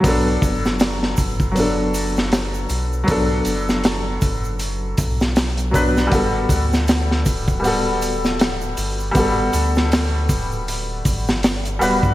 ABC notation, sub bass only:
X:1
M:4/4
L:1/16
Q:"Swing 16ths" 1/4=79
K:Bm
V:1 name="Sub bass" clef=bass
B,,,2 F,,,4 F,,,8 B,,,2 | B,,,2 F,,,4 F,,,4 B,,,6 | G,,,2 D,,4 D,,,8 G,,,2 | G,,,2 D,,4 D,,,4 G,,,4 D,,, G,, |]